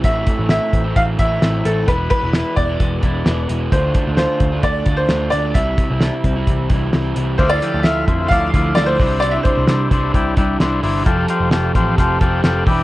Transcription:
<<
  \new Staff \with { instrumentName = "Upright piano" } { \time 4/4 \key d \dorian \tempo 4 = 131 e''4 e''4 f''8 e''4 a'8 | b'8 b'4 d''2 r8 | c''4 c''4 d''8. c''8. d''8 | e''2. r4 |
c''16 d''8. e''4 f''4 d''16 c''8. | d''16 e''16 c''2 r4. | r1 | }
  \new Staff \with { instrumentName = "Transistor combo organ" } { \time 4/4 \key d \dorian r1 | r1 | r1 | r1 |
<e' f' d''>8 <e' f' g'>8 <e' f' f''>8 <e' f' c''>8 <e' f' d''>8 <e' f' d''>8 <e' f' d''>8 <d' e' c''>8~ | <d' e' c''>8 <d' e' c''>8 <d' e' c''>8 <d' e' c''>8 <d' e' g'>8 <d' e' g'>8 <d' e' c''>8 <d' e' c''>8 | <f' g' a'>8 <f' g' c''>8 <f' g' a'>8 <f' g' c''>8 <f' g' c''>8 <f' g' a'>8 <f' g' a'>8 <e' g' d''>8 | }
  \new Staff \with { instrumentName = "Overdriven electric guitar" } { \time 4/4 \key d \dorian <a, e a c' e'>8. <a c' e'>4 <a c' e'>8. <e a c' e'>8 <e a c' e'>8 <e a c' e'>8 | <e gis b e'>8. <gis b e'>4 <gis b e'>8. <e gis b e'>8 <e gis b e'>8 <e gis b e'>8 | <d a d' f'>8. <a d' f'>4 <a d' f'>8. <d a d' f'>8 <d a d' f'>8 <d a d' f'>8 | <c e g c' e'>8. <g c' e'>4 <g c' e'>8. <e g c' e'>8 <e g c' e'>8 <e g c' e'>8 |
<d f a e'>16 <f a e'>4~ <f a e'>16 <d f a e'>4 <d f a e'>8 <d f a e'>8 <e g d' e'>8 | <c e g d' e'>16 <g d' e'>4~ <g d' e'>16 <e g d' e'>4 <e g d' e'>8 <e g d' e'>8 <e g d' e'>8 | <f g c' g' a'>16 <c' g' a'>4~ <c' g' a'>16 <g c' g' a'>4 <g c' g' a'>8 <g c' g' a'>8 <g d' e' b'>8 | }
  \new Staff \with { instrumentName = "Clean electric guitar" } { \time 4/4 \key d \dorian a,8 a8 e'8 c'8 e8 e'8 c'8 a8 | e8 gis8 e'8 b8 gis8 e'8 b8 gis8 | d8 a8 f'8 d'8 a8 f'8 d'8 a8 | c8 g8 d'16 e'16 c'8 e8 e'8 c'8 g8 |
d8 f8 a8 f8 d'16 r16 f8 g16 a16 c8 | c8 g8 d'8 g8 e'8 g8 d'8 e'8 | f8 c'8 f'16 g'16 c'8 a'8 c'8 g'8 e8 | }
  \new Staff \with { instrumentName = "Picked electric bass" } { \clef bass \time 4/4 \key d \dorian a,,8 r16 a,,8 r16 a,,8 a,,8 a,,8 a,,8 a,,8 | e,,8 r16 e,,8 r16 e,,8 e,,8 e,,8 e,,8 e,,8 | d,8 r16 d,8 r16 d,8 d,8 d,8 d,8 d,8 | c,8 r16 c,8 r16 c,8 c,8 c,8 c,8 c,8 |
d,8 r16 d,16 d,8 f,8 d,8 d,8 d,8 c,8~ | c,8 r16 c,16 c,8 c,8 c,8 c,8 c,8 g,,8 | f,,8 r16 f,,16 f,,8 a,,8 f,,8 f,,8 f,,8 e,,8 | }
  \new DrumStaff \with { instrumentName = "Drums" } \drummode { \time 4/4 <hh bd>8 <hh bd>8 <hh sn>8 <hh bd>8 <hh bd>8 <hh bd>8 <hh sn>8 hh8 | <hh bd>8 <hh bd>8 <hh sn>8 <hh bd>8 <hh bd>8 <hh bd>8 <hh sn>8 hh8 | <hh bd>8 <hh bd>8 <hh sn>8 <hh bd>8 <hh bd sn>8 <hh bd>8 <hh sn>8 hh8 | <hh bd>8 <hh bd>8 <hh sn>8 <hh bd>8 <hh bd>8 <hh bd>8 <hh sn>8 hh8 |
<cymc bd>8 hh8 <hh sn>8 <hh bd>8 <hh bd sn>8 <hh bd>8 <hh sn>8 <hho bd>8 | hh8 <hh bd>8 <hh sn>8 <hh bd>8 <hh bd>8 <hh bd>8 <hh sn>8 hho8 | <hh bd>8 hh8 <hh sn>8 <hh bd>8 <hh bd sn>8 <hh bd>8 <hh sn>8 <hho bd>8 | }
>>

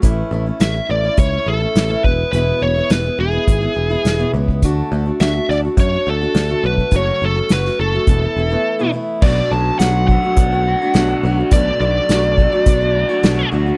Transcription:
<<
  \new Staff \with { instrumentName = "Lead electric guitar" } { \time 4/4 \key b \dorian \tempo 4 = 104 r4 e''8 d''8 cis''8 a'4 b'8 | b'8 cis''8 b'8 gis'2 r8 | r4 e''8 d''8 cis''8 a'4 b'8 | cis''8 a'8 b'8 a'2 r8 |
d''8 a''8 fis''8 fis''2~ fis''8 | d''8 d''2. r8 | }
  \new Staff \with { instrumentName = "Overdriven electric guitar" } { \time 4/4 \key b \dorian r1 | r1 | r1 | r1 |
b,8 fis8 fis8 a8 d'8 fis'8 d'8 fis'8 | b,8 fis8 fis8 a8 d'8 fis'8 d'8 fis'8 | }
  \new Staff \with { instrumentName = "Steel-string acoustic guitar" } { \time 4/4 \key b \dorian <a, e a cis' e'>8 <e a cis' e'>16 <a cis' e'>16 <a, e a cis' e'>16 <a cis' e'>16 <e a cis' e'>16 <a cis' e'>8 <a cis' e'>16 <e a cis' e'>16 <a cis' e'>8 <a, e a cis' e'>16 <e gis b e'>8 | <e, b, e gis b e'>8 <e gis b e'>16 <e gis b e'>16 <e, b, e gis b e'>16 <e gis b e'>16 <e gis b e'>16 <e gis b e'>8 <e gis b e'>16 <e gis b e'>16 <e gis b e'>8 <e, b, e gis b e'>16 <e gis b e'>8 | <d a d' fis'>8 <d a d' fis'>16 <a d' fis'>16 <d a d' fis'>16 <a d' fis'>16 <d a d' fis'>16 <a d' fis'>8 <a d' fis'>16 <d a d' fis'>16 <a d' fis'>8 <d a d' fis'>16 <d a d' fis'>8 | <fis, cis fis a cis' fis'>8 <fis a cis' fis'>16 <fis a cis' fis'>16 <fis, cis fis a cis' fis'>16 <fis a cis' fis'>16 <fis a cis' fis'>16 <fis a cis' fis'>16 <e, b, e a b e'>16 <e a b e'>16 <e a b e'>16 <e a b e'>8 <e, b, e a b e'>16 <e a b e'>8 |
<b, fis a d' fis'>8 <fis a d' fis'>8 <b, fis a d' fis'>8 <fis a d' fis'>16 <a d' fis'>8 <a d' fis'>8 <a d' fis'>16 <b, fis a d' fis'>8 <fis a d' fis'>16 <a d' fis'>16 | <b, fis a d' fis'>8 <fis a d' fis'>8 <b, fis a d' fis'>8 <fis a d' fis'>16 <a d' fis'>8 <a d' fis'>8 <a d' fis'>16 <b, fis a d' fis'>8 <fis a d' fis'>16 <a d' fis'>16 | }
  \new Staff \with { instrumentName = "Picked electric bass" } { \clef bass \time 4/4 \key b \dorian a,,8 a,,8 a,,8 a,,8 cis,8 a,,8 a,,8 e,,8 | e,,8 e,,8 e,,8 e,,8 gis,,8 e,,8 e,,8 cis,8 | d,8 d,8 d,8 d,8 fis,8 d,8 d,8 b,,8 | fis,,8 fis,,8 fis,,8 fis,,8 e,,8 e,,8 r4 |
b,,8 b,,8 b,,4 b,,4 b,,8 b,,8 | b,,8 b,,8 b,,4 b,,4 b,,8 d,8 | }
  \new DrumStaff \with { instrumentName = "Drums" } \drummode { \time 4/4 <hh bd>4 <hh sn>4 <hh bd>4 <hh sn>8 bd8 | hh4 <hh sn>4 <hh bd>4 <hh sn>8. bd16 | <hh bd>4 <hh sn>8 sn8 <hh bd>4 <hh sn>8. bd16 | <hh bd>4 <hh sn>16 sn8. <hh bd>4 r4 |
<cymc bd>4 <hh sn>8 bd8 <hh bd>4 <hh sn>4 | <hh bd>4 <hh sn>8 bd8 <hh bd>4 <hh sn>4 | }
>>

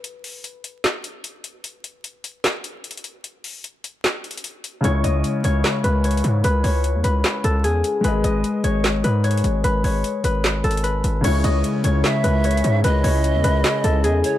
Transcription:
<<
  \new Staff \with { instrumentName = "Pan flute" } { \time 4/4 \key cis \minor \tempo 4 = 150 r1 | r1 | r1 | r1 |
r1 | r1 | r1 | r2 e''2 |
dis''2.~ dis''8 cis''8 | }
  \new Staff \with { instrumentName = "Harp" } { \time 4/4 \key cis \minor r1 | r1 | r1 | cis''8 dis''4 cis''4 b'8 cis''4 |
b'8 cis''4 b'4 a'8 gis'4 | b'8 dis''4 cis''4 b'8 cis''4 | b'8 cis''4 b'4 a'8 b'8 r8 | cis''8 dis''4 cis''4 b'8 cis''4 |
b'8 cis''4 b'4 a'8 gis'4 | }
  \new Staff \with { instrumentName = "Grand piano" } { \time 4/4 \key cis \minor r1 | r1 | r1 | <cis gis e' cis''>1~ |
<cis gis e' cis''>1 | <gis gis' b' dis''>1~ | <gis gis' b' dis''>1 | <cis gis e' cis''>1~ |
<cis gis e' cis''>1 | }
  \new Staff \with { instrumentName = "Analog synth pad" } { \time 4/4 \key cis \minor r1 | r1 | r1 | r1 |
r1 | r1 | r1 | <cis cis' e' gis'>1~ |
<cis cis' e' gis'>1 | }
  \new Staff \with { instrumentName = "808-style bass" } { \clef bass \time 4/4 \key cis \minor r1 | r1 | r1 | cis,8 cis,8 r8 cis,8 r8 cis,4 gis,8 |
cis,8 cis,8. e,16 cis,8 r8 cis,8 e,8 r8 | gis,,8 gis,,8 r8 gis,,4 gis,4 gis,,8 | gis,,8 gis,,8 r8 gis,,4 gis,,4 gis,,8 | cis,8 cis,8 r8 cis,8 r8 cis,4 gis,8 |
cis,8 cis,8. e,16 cis,8 r8 cis,8 e,8 r8 | }
  \new DrumStaff \with { instrumentName = "Drums" } \drummode { \time 4/4 hh8 hho8 hh8 hh8 <hc hh sn>8 hh8 hh8 hh8 | hh8 hh8 hh8 hh8 <hc hh sn>8 hh8 \tuplet 3/2 { hh16 hh16 hh16 hh16 r16 r16 } | hh8 hho8 hh8 hh8 \tuplet 3/2 { <hc hh sn>16 r16 r16 hh16 hh16 hh16 } hh8 hh8 | hh8 hh8 hh8 hh8 <hc hh sn>8 hh8 \tuplet 3/2 { hh16 hh16 hh16 hh16 r16 r16 } |
hh8 hho8 hh8 hh8 <hc hh sn>8 hh8 hh8 hh8 | hh8 hh8 hh8 hh8 <hc hh sn>8 hh8 \tuplet 3/2 { hh16 hh16 hh16 hh16 r16 r16 } | hh8 hho8 hh8 hh8 \tuplet 3/2 { <hc hh sn>16 r16 r16 hh16 hh16 hh16 } hh8 hh8 | <cymc hh>8 hh8 hh8 hh8 <hc hh sn>8 hh8 \tuplet 3/2 { hh16 hh16 hh16 hh16 r16 r16 } |
hh8 hho8 hh8 hh8 <hc hh sn>8 hh8 hh8 hh8 | }
>>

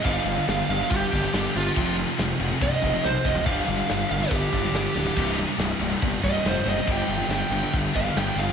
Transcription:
<<
  \new Staff \with { instrumentName = "Lead electric guitar" } { \time 4/4 \key g \phrygian \tempo 4 = 140 f''4. f''8 g'4. f'8~ | f'8 r4. ees''4 c''8 ees''8 | f''4. f''8 g'4. g'8~ | g'8 r2 ees''8 c''8 ees''8 |
g''4 g''4 r8 f''8 g''8 f''8 | }
  \new Staff \with { instrumentName = "Distorted electric guitar" } { \clef bass \time 4/4 \key g \phrygian <g, d g b d' g'>2~ <g, d g b d' g'>8 <g, d g b d' g'>8 <g, d g b d' g'>4 | <f, c f aes c' f'>2~ <f, c f aes c' f'>8 <f, c f aes c' f'>8 <f, c f aes c' f'>4 | <g, d g b d' g'>2~ <g, d g b d' g'>8 <g, d g b d' g'>8 <g, d g b d' g'>4 | <c, g, c g ees'>2~ <c, g, c g ees'>8 <c, g, c g ees'>8 <c, g, c g ees'>4 |
<g, d g b d' g'>2~ <g, d g b d' g'>8 <g, d g b d' g'>8 <g, d g b d' g'>4 | }
  \new Staff \with { instrumentName = "Distorted electric guitar" } { \clef bass \time 4/4 \key g \phrygian <g, d g>8 <g, d>16 <g, d>16 <g, d>8 <g, d>16 <g, d>16 <g, d>8 <g, d>16 <g, d>16 <g, d>8 <g, d>16 <g, d>16 | <f, c f>8 <f, c>16 <f, c>16 <f, c>8 <f, c>16 <f, c>16 <f, c>8 <f, c>16 <f, c>16 <f, c>8 <f, c>16 <f, c>16 | <g, d g>8 <g, d>16 <g, d>16 <g, d>8 <g, d>16 <g, d>16 <g, d>8 <g, d>16 <g, d>16 <g, d>8 <g, d>16 <g, d>16 | <c, g, c>8 <c, g,>16 <c, g,>16 <c, g,>8 <c, g,>16 <c, g,>16 <c, g,>8 <c, g,>16 <c, g,>16 <c, g,>8 <c, g,>16 <c, g,>16 |
<g, d g>8 <g, d>16 <g, d>16 <g, d>8 <g, d>16 <g, d>16 <g, d>8 <g, d>16 <g, d>16 <g, d>8 <g, d>16 <g, d>16 | }
  \new Staff \with { instrumentName = "Distorted electric guitar" } { \clef bass \time 4/4 \key g \phrygian <g, d g>8 <g, d>16 <g, d>16 <g, d>8 <g, d>16 <g, d>16 <g, d>8 <g, d>16 <g, d>16 <g, d>8 <g, d>16 <g, d>16 | <f, c f>8 <f, c>16 <f, c>16 <f, c>8 <f, c>16 <f, c>16 <f, c>8 <f, c>16 <f, c>16 <f, c>8 <f, c>16 <f, c>16 | <g, d g>8 <g, d>16 <g, d>16 <g, d>8 <g, d>16 <g, d>16 <g, d>8 <g, d>16 <g, d>16 <g, d>8 <g, d>16 <g, d>16 | <c, g, c>8 <c, g,>16 <c, g,>16 <c, g,>8 <c, g,>16 <c, g,>16 <c, g,>8 <c, g,>16 <c, g,>16 <c, g,>8 <c, g,>16 <c, g,>16 |
<g, d g>8 <g, d>16 <g, d>16 <g, d>8 <g, d>16 <g, d>16 <g, d>8 <g, d>16 <g, d>16 <g, d>8 <g, d>16 <g, d>16 | }
  \new Staff \with { instrumentName = "Picked electric bass" } { \clef bass \time 4/4 \key g \phrygian g,,8 g,,8 g,,8 g,,8 g,,8 g,,8 g,,8 g,,8 | f,,4 f,,8 f,,8 c,,8 f,,8 b,,8 f,,8 | g,,8 g,,8 g,,8 g,,8 g,,8 g,,8 g,,8 d,,8 | c,,4 c,,8 c,,8 g,,8 c,,8 f,,8 fis,,8 |
g,,8 g,,8 g,,8 g,,8 g,,8 g,,8 g,,8 g,,8 | }
  \new DrumStaff \with { instrumentName = "Drums" } \drummode { \time 4/4 <cymc bd>8 cymc8 <cymc sn>8 cymc8 <cymc bd>8 <cymc bd>8 <cymc sn>8 cymc8 | <cymc bd>8 cymc8 <cymc sn>8 cymc8 <cymc bd>8 <cymc bd>8 sn8 bd16 tomfh16 | <cymc bd>8 cymc8 <cymc sn>8 cymc8 <cymc bd>8 <cymc bd>16 sn16 <cymc sn>8 cymc8 | <cymc bd>8 cymc8 <cymc sn>8 cymc8 <cymc bd>8 <cymc bd>8 <cymc sn>8 cymc8 |
<cymc bd>8 cymc8 <cymc sn>8 cymc8 <cymc bd>8 <cymc bd>8 <cymc sn>8 cymc8 | }
>>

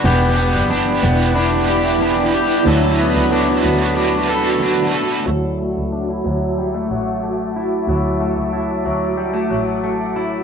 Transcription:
<<
  \new Staff \with { instrumentName = "Ambient pad" } { \time 4/4 \key d \major \tempo 4 = 92 << { <d'' b''>1~ | <d'' b''>1 | <e'' d'''>1~ | <e'' d'''>1 | } \\ { e'1 | <fis' a''>1 | <fis' a''>1~ | <fis' a''>1 | } >> }
  \new Staff \with { instrumentName = "Overdriven electric guitar" } { \time 4/4 \key d \major <e b d' g'>8 <b d' g'>8 <e b d' g'>8 <b d' g'>8 <e b d' g'>8 <b d' g'>8 <e b d' g'>8 <b d' g'>8 | <d fis a d' fis' b'>8 <a d' fis' b'>8 <fis a d' fis' b'>8 <a d' fis' b'>8 <a d' fis' b'>8 <a d' fis' b'>8 <d fis a d' fis' b'>8 <a d' fis' b'>8 | r1 | r1 | }
  \new Staff \with { instrumentName = "Clean electric guitar" } { \time 4/4 \key d \major <b g'>8 b8 d'8 b8 d'8 g'8 d'8 g'8 | <fis a'>8 b8 d'8 b8 d'8 a'8 d'8 a'8 | <fis e'>8 a8 d'16 e'16 fis8 g16 a16 fis8 a8 e'8 | <fis e'>8 a8 e'8 fis8 g16 a16 fis8 a8 e'8 | }
  \new Staff \with { instrumentName = "Double bass" } { \clef bass \time 4/4 \key d \major e,,8. fis,,8. e,,2 r8 | d,8. cis,8. d,2 r8 | d,8. cis,8. d,4 a,,4. | d,8. cis,8. d,4 a,,4. | }
>>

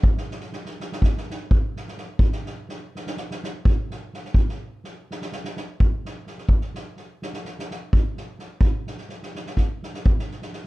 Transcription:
\new DrumStaff \with { instrumentName = "Drums" } \drummode { \time 9/8 \tempo 4. = 84 bd16 sn16 sn16 sn16 sn16 sn16 sn16 sn16 <bd sn>16 sn16 sn8 bd8 sn16 sn16 sn8 | bd16 sn16 sn8 sn8 sn16 sn16 sn16 sn16 sn8 bd8 sn8 sn16 sn16 | bd16 sn8. sn8 sn16 sn16 sn16 sn16 sn8 bd8 sn8 sn16 sn16 | bd16 sn16 sn8 sn8 sn16 sn16 sn16 sn16 sn8 bd8 sn8 sn8 |
bd8 sn16 sn16 sn16 sn16 sn16 sn16 <bd sn>8 sn16 sn16 bd16 sn16 sn16 sn16 sn8 | }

